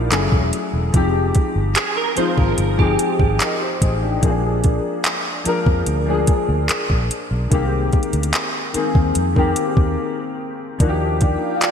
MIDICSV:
0, 0, Header, 1, 7, 480
1, 0, Start_track
1, 0, Tempo, 821918
1, 548, Time_signature, 4, 2, 24, 8
1, 6839, End_track
2, 0, Start_track
2, 0, Title_t, "Ambient pad"
2, 0, Program_c, 0, 92
2, 6306, Note_on_c, 0, 77, 74
2, 6307, Note_on_c, 0, 65, 78
2, 6307, Note_on_c, 0, 74, 74
2, 6308, Note_on_c, 0, 79, 89
2, 6839, Note_off_c, 0, 65, 0
2, 6839, Note_off_c, 0, 74, 0
2, 6839, Note_off_c, 0, 77, 0
2, 6839, Note_off_c, 0, 79, 0
2, 6839, End_track
3, 0, Start_track
3, 0, Title_t, "Clean electric guitar"
3, 0, Program_c, 1, 27
3, 1028, Note_on_c, 1, 68, 74
3, 1142, Note_off_c, 1, 68, 0
3, 1149, Note_on_c, 1, 70, 82
3, 1263, Note_off_c, 1, 70, 0
3, 1268, Note_on_c, 1, 72, 84
3, 1389, Note_off_c, 1, 72, 0
3, 1389, Note_on_c, 1, 70, 84
3, 1617, Note_off_c, 1, 70, 0
3, 1628, Note_on_c, 1, 67, 72
3, 2325, Note_off_c, 1, 67, 0
3, 6839, End_track
4, 0, Start_track
4, 0, Title_t, "Grand piano"
4, 0, Program_c, 2, 0
4, 0, Control_c, 2, 64, 127
4, 0, Note_on_c, 2, 53, 80
4, 0, Note_on_c, 2, 58, 74
4, 0, Note_on_c, 2, 62, 71
4, 0, Note_on_c, 2, 63, 75
4, 0, Note_on_c, 2, 64, 75
4, 0, Note_on_c, 2, 65, 90
4, 0, Note_on_c, 2, 67, 85
4, 59, Note_on_c, 2, 54, 87
4, 64, Note_off_c, 2, 53, 0
4, 64, Note_on_c, 2, 57, 81
4, 66, Note_off_c, 2, 58, 0
4, 69, Note_off_c, 2, 62, 0
4, 70, Note_on_c, 2, 61, 81
4, 72, Note_off_c, 2, 63, 0
4, 75, Note_off_c, 2, 64, 0
4, 75, Control_c, 2, 64, 0
4, 75, Note_on_c, 2, 64, 78
4, 80, Note_on_c, 2, 68, 93
4, 81, Note_off_c, 2, 67, 0
4, 94, Note_off_c, 2, 65, 0
4, 192, Control_c, 2, 64, 127
4, 448, Note_off_c, 2, 54, 0
4, 450, Note_off_c, 2, 57, 0
4, 453, Note_off_c, 2, 61, 0
4, 456, Note_off_c, 2, 64, 0
4, 458, Note_off_c, 2, 68, 0
4, 540, Note_on_c, 2, 53, 77
4, 545, Note_on_c, 2, 56, 74
4, 551, Note_on_c, 2, 60, 72
4, 557, Control_c, 2, 64, 0
4, 557, Note_on_c, 2, 63, 69
4, 562, Note_on_c, 2, 67, 86
4, 645, Control_c, 2, 64, 127
4, 1119, Note_off_c, 2, 53, 0
4, 1122, Note_off_c, 2, 56, 0
4, 1125, Note_off_c, 2, 60, 0
4, 1128, Note_off_c, 2, 63, 0
4, 1131, Note_off_c, 2, 67, 0
4, 1257, Note_on_c, 2, 53, 78
4, 1263, Note_on_c, 2, 56, 74
4, 1268, Note_on_c, 2, 60, 67
4, 1274, Note_on_c, 2, 63, 74
4, 1280, Note_on_c, 2, 65, 84
4, 1550, Note_off_c, 2, 53, 0
4, 1553, Note_off_c, 2, 56, 0
4, 1556, Note_off_c, 2, 60, 0
4, 1559, Note_off_c, 2, 63, 0
4, 1562, Note_off_c, 2, 65, 0
4, 1618, Note_on_c, 2, 53, 82
4, 1625, Note_on_c, 2, 56, 74
4, 1629, Note_on_c, 2, 60, 74
4, 1636, Note_on_c, 2, 63, 73
4, 1640, Note_on_c, 2, 68, 91
4, 1990, Note_on_c, 2, 75, 63
4, 1992, Note_off_c, 2, 63, 0
4, 1994, Note_off_c, 2, 68, 0
4, 1994, Note_on_c, 2, 70, 54
4, 2103, Note_off_c, 2, 75, 0
4, 2105, Note_off_c, 2, 70, 0
4, 2110, Note_on_c, 2, 72, 68
4, 2114, Note_on_c, 2, 67, 59
4, 2223, Note_off_c, 2, 72, 0
4, 2225, Note_off_c, 2, 67, 0
4, 2230, Note_on_c, 2, 68, 68
4, 2234, Note_on_c, 2, 63, 63
4, 2294, Note_off_c, 2, 53, 0
4, 2298, Note_off_c, 2, 56, 0
4, 2300, Note_off_c, 2, 60, 0
4, 2343, Note_off_c, 2, 68, 0
4, 2345, Note_off_c, 2, 63, 0
4, 2350, Note_on_c, 2, 67, 62
4, 2354, Note_on_c, 2, 62, 57
4, 2458, Note_on_c, 2, 53, 79
4, 2464, Note_on_c, 2, 56, 72
4, 2469, Note_on_c, 2, 58, 70
4, 2475, Note_on_c, 2, 60, 57
4, 2477, Control_c, 2, 64, 0
4, 2481, Note_on_c, 2, 68, 88
4, 2505, Note_off_c, 2, 62, 0
4, 2510, Note_off_c, 2, 60, 0
4, 2514, Note_on_c, 2, 62, 72
4, 2577, Note_off_c, 2, 67, 0
4, 2588, Control_c, 2, 64, 127
4, 3039, Note_off_c, 2, 53, 0
4, 3041, Note_off_c, 2, 56, 0
4, 3044, Note_off_c, 2, 58, 0
4, 3050, Note_off_c, 2, 68, 0
4, 3066, Note_off_c, 2, 62, 0
4, 3178, Note_on_c, 2, 53, 82
4, 3183, Note_on_c, 2, 56, 70
4, 3189, Note_on_c, 2, 58, 74
4, 3195, Note_on_c, 2, 62, 70
4, 3200, Note_on_c, 2, 70, 89
4, 3471, Note_off_c, 2, 53, 0
4, 3473, Note_off_c, 2, 56, 0
4, 3476, Note_off_c, 2, 58, 0
4, 3479, Note_off_c, 2, 62, 0
4, 3482, Note_off_c, 2, 70, 0
4, 3538, Note_on_c, 2, 53, 82
4, 3544, Note_on_c, 2, 56, 78
4, 3550, Note_on_c, 2, 58, 72
4, 3556, Note_on_c, 2, 62, 76
4, 3562, Note_on_c, 2, 68, 93
4, 4214, Note_off_c, 2, 53, 0
4, 4217, Note_off_c, 2, 56, 0
4, 4220, Note_off_c, 2, 58, 0
4, 4223, Note_off_c, 2, 62, 0
4, 4226, Note_off_c, 2, 68, 0
4, 4378, Note_on_c, 2, 51, 82
4, 4384, Note_on_c, 2, 56, 76
4, 4389, Note_on_c, 2, 58, 76
4, 4395, Note_on_c, 2, 60, 75
4, 4397, Control_c, 2, 64, 0
4, 4401, Note_on_c, 2, 67, 89
4, 4497, Control_c, 2, 64, 127
4, 4958, Note_off_c, 2, 51, 0
4, 4961, Note_off_c, 2, 56, 0
4, 4964, Note_off_c, 2, 58, 0
4, 4967, Note_off_c, 2, 60, 0
4, 4970, Note_off_c, 2, 67, 0
4, 5098, Note_on_c, 2, 51, 77
4, 5104, Note_on_c, 2, 56, 71
4, 5110, Note_on_c, 2, 58, 70
4, 5116, Note_on_c, 2, 60, 73
4, 5120, Note_on_c, 2, 68, 87
4, 5391, Note_off_c, 2, 51, 0
4, 5394, Note_off_c, 2, 56, 0
4, 5397, Note_off_c, 2, 58, 0
4, 5400, Note_off_c, 2, 60, 0
4, 5402, Note_off_c, 2, 68, 0
4, 5458, Note_on_c, 2, 51, 78
4, 5464, Note_on_c, 2, 56, 75
4, 5469, Note_on_c, 2, 58, 75
4, 5474, Note_on_c, 2, 60, 77
4, 5481, Note_on_c, 2, 67, 88
4, 6134, Note_off_c, 2, 51, 0
4, 6137, Note_off_c, 2, 56, 0
4, 6140, Note_off_c, 2, 58, 0
4, 6142, Note_off_c, 2, 60, 0
4, 6146, Note_off_c, 2, 67, 0
4, 6299, Note_on_c, 2, 53, 77
4, 6303, Note_on_c, 2, 58, 76
4, 6310, Note_on_c, 2, 62, 72
4, 6315, Control_c, 2, 64, 0
4, 6315, Note_on_c, 2, 63, 72
4, 6321, Note_on_c, 2, 66, 68
4, 6353, Note_off_c, 2, 66, 0
4, 6358, Note_on_c, 2, 67, 90
4, 6412, Control_c, 2, 64, 127
4, 6839, Note_off_c, 2, 53, 0
4, 6839, Note_off_c, 2, 58, 0
4, 6839, Note_off_c, 2, 62, 0
4, 6839, Note_off_c, 2, 63, 0
4, 6839, Note_off_c, 2, 67, 0
4, 6839, End_track
5, 0, Start_track
5, 0, Title_t, "Fingered electric bass"
5, 0, Program_c, 3, 33
5, 68, Note_on_c, 3, 30, 96
5, 176, Note_off_c, 3, 30, 0
5, 187, Note_on_c, 3, 28, 82
5, 296, Note_off_c, 3, 28, 0
5, 429, Note_on_c, 3, 28, 80
5, 537, Note_off_c, 3, 28, 0
5, 548, Note_on_c, 3, 29, 97
5, 764, Note_off_c, 3, 29, 0
5, 909, Note_on_c, 3, 31, 93
5, 1017, Note_off_c, 3, 31, 0
5, 1388, Note_on_c, 3, 32, 74
5, 1496, Note_off_c, 3, 32, 0
5, 1507, Note_on_c, 3, 31, 89
5, 1723, Note_off_c, 3, 31, 0
5, 1866, Note_on_c, 3, 32, 88
5, 1975, Note_off_c, 3, 32, 0
5, 2228, Note_on_c, 3, 33, 78
5, 2444, Note_off_c, 3, 33, 0
5, 2469, Note_on_c, 3, 34, 109
5, 2792, Note_off_c, 3, 34, 0
5, 3308, Note_on_c, 3, 41, 86
5, 3416, Note_off_c, 3, 41, 0
5, 3427, Note_on_c, 3, 38, 90
5, 3643, Note_off_c, 3, 38, 0
5, 3788, Note_on_c, 3, 38, 84
5, 3896, Note_off_c, 3, 38, 0
5, 4030, Note_on_c, 3, 34, 92
5, 4137, Note_off_c, 3, 34, 0
5, 4269, Note_on_c, 3, 35, 88
5, 4376, Note_off_c, 3, 35, 0
5, 4389, Note_on_c, 3, 36, 103
5, 4604, Note_off_c, 3, 36, 0
5, 4749, Note_on_c, 3, 38, 83
5, 4857, Note_off_c, 3, 38, 0
5, 5227, Note_on_c, 3, 39, 80
5, 5336, Note_off_c, 3, 39, 0
5, 5348, Note_on_c, 3, 41, 89
5, 5564, Note_off_c, 3, 41, 0
5, 5704, Note_on_c, 3, 39, 81
5, 5814, Note_off_c, 3, 39, 0
5, 6308, Note_on_c, 3, 39, 105
5, 6632, Note_off_c, 3, 39, 0
5, 6839, End_track
6, 0, Start_track
6, 0, Title_t, "Muted fingered electric bass strokes"
6, 1270, Note_on_c, 9, 29, 46
6, 1328, Note_off_c, 9, 29, 0
6, 3189, Note_on_c, 9, 29, 48
6, 3247, Note_off_c, 9, 29, 0
6, 3910, Note_on_c, 9, 29, 47
6, 3969, Note_off_c, 9, 29, 0
6, 5108, Note_on_c, 9, 29, 45
6, 5167, Note_off_c, 9, 29, 0
6, 6839, End_track
7, 0, Start_track
7, 0, Title_t, "Drums"
7, 68, Note_on_c, 9, 42, 64
7, 69, Note_on_c, 9, 39, 98
7, 126, Note_off_c, 9, 42, 0
7, 127, Note_off_c, 9, 39, 0
7, 188, Note_on_c, 9, 36, 85
7, 246, Note_off_c, 9, 36, 0
7, 309, Note_on_c, 9, 42, 66
7, 367, Note_off_c, 9, 42, 0
7, 548, Note_on_c, 9, 36, 91
7, 548, Note_on_c, 9, 42, 60
7, 606, Note_off_c, 9, 42, 0
7, 607, Note_off_c, 9, 36, 0
7, 786, Note_on_c, 9, 42, 54
7, 791, Note_on_c, 9, 36, 87
7, 844, Note_off_c, 9, 42, 0
7, 850, Note_off_c, 9, 36, 0
7, 1024, Note_on_c, 9, 42, 58
7, 1029, Note_on_c, 9, 39, 109
7, 1083, Note_off_c, 9, 42, 0
7, 1087, Note_off_c, 9, 39, 0
7, 1265, Note_on_c, 9, 42, 58
7, 1323, Note_off_c, 9, 42, 0
7, 1388, Note_on_c, 9, 36, 97
7, 1446, Note_off_c, 9, 36, 0
7, 1505, Note_on_c, 9, 42, 64
7, 1564, Note_off_c, 9, 42, 0
7, 1629, Note_on_c, 9, 36, 75
7, 1688, Note_off_c, 9, 36, 0
7, 1747, Note_on_c, 9, 42, 74
7, 1805, Note_off_c, 9, 42, 0
7, 1866, Note_on_c, 9, 36, 94
7, 1924, Note_off_c, 9, 36, 0
7, 1987, Note_on_c, 9, 42, 63
7, 1989, Note_on_c, 9, 39, 93
7, 2046, Note_off_c, 9, 42, 0
7, 2047, Note_off_c, 9, 39, 0
7, 2229, Note_on_c, 9, 36, 74
7, 2230, Note_on_c, 9, 42, 67
7, 2287, Note_off_c, 9, 36, 0
7, 2288, Note_off_c, 9, 42, 0
7, 2469, Note_on_c, 9, 36, 98
7, 2469, Note_on_c, 9, 42, 63
7, 2527, Note_off_c, 9, 36, 0
7, 2527, Note_off_c, 9, 42, 0
7, 2708, Note_on_c, 9, 42, 52
7, 2712, Note_on_c, 9, 36, 88
7, 2766, Note_off_c, 9, 42, 0
7, 2771, Note_off_c, 9, 36, 0
7, 2945, Note_on_c, 9, 42, 62
7, 2950, Note_on_c, 9, 39, 106
7, 3004, Note_off_c, 9, 42, 0
7, 3009, Note_off_c, 9, 39, 0
7, 3186, Note_on_c, 9, 42, 64
7, 3244, Note_off_c, 9, 42, 0
7, 3308, Note_on_c, 9, 36, 95
7, 3366, Note_off_c, 9, 36, 0
7, 3425, Note_on_c, 9, 42, 65
7, 3483, Note_off_c, 9, 42, 0
7, 3664, Note_on_c, 9, 42, 70
7, 3667, Note_on_c, 9, 36, 87
7, 3722, Note_off_c, 9, 42, 0
7, 3725, Note_off_c, 9, 36, 0
7, 3908, Note_on_c, 9, 42, 65
7, 3909, Note_on_c, 9, 39, 98
7, 3966, Note_off_c, 9, 42, 0
7, 3968, Note_off_c, 9, 39, 0
7, 4028, Note_on_c, 9, 36, 86
7, 4087, Note_off_c, 9, 36, 0
7, 4151, Note_on_c, 9, 42, 68
7, 4210, Note_off_c, 9, 42, 0
7, 4389, Note_on_c, 9, 36, 97
7, 4389, Note_on_c, 9, 42, 66
7, 4447, Note_off_c, 9, 42, 0
7, 4448, Note_off_c, 9, 36, 0
7, 4629, Note_on_c, 9, 42, 31
7, 4632, Note_on_c, 9, 36, 93
7, 4687, Note_off_c, 9, 42, 0
7, 4688, Note_on_c, 9, 42, 39
7, 4690, Note_off_c, 9, 36, 0
7, 4747, Note_off_c, 9, 42, 0
7, 4749, Note_on_c, 9, 42, 50
7, 4807, Note_off_c, 9, 42, 0
7, 4808, Note_on_c, 9, 42, 56
7, 4866, Note_off_c, 9, 42, 0
7, 4866, Note_on_c, 9, 42, 62
7, 4871, Note_on_c, 9, 39, 109
7, 4924, Note_off_c, 9, 42, 0
7, 4929, Note_off_c, 9, 39, 0
7, 5106, Note_on_c, 9, 42, 64
7, 5165, Note_off_c, 9, 42, 0
7, 5227, Note_on_c, 9, 36, 90
7, 5286, Note_off_c, 9, 36, 0
7, 5344, Note_on_c, 9, 42, 69
7, 5403, Note_off_c, 9, 42, 0
7, 5468, Note_on_c, 9, 36, 81
7, 5526, Note_off_c, 9, 36, 0
7, 5583, Note_on_c, 9, 42, 68
7, 5642, Note_off_c, 9, 42, 0
7, 5705, Note_on_c, 9, 36, 95
7, 5763, Note_off_c, 9, 36, 0
7, 6308, Note_on_c, 9, 36, 99
7, 6308, Note_on_c, 9, 42, 58
7, 6366, Note_off_c, 9, 36, 0
7, 6366, Note_off_c, 9, 42, 0
7, 6545, Note_on_c, 9, 42, 52
7, 6551, Note_on_c, 9, 36, 87
7, 6603, Note_off_c, 9, 42, 0
7, 6609, Note_off_c, 9, 36, 0
7, 6783, Note_on_c, 9, 42, 61
7, 6788, Note_on_c, 9, 39, 103
7, 6839, Note_off_c, 9, 39, 0
7, 6839, Note_off_c, 9, 42, 0
7, 6839, End_track
0, 0, End_of_file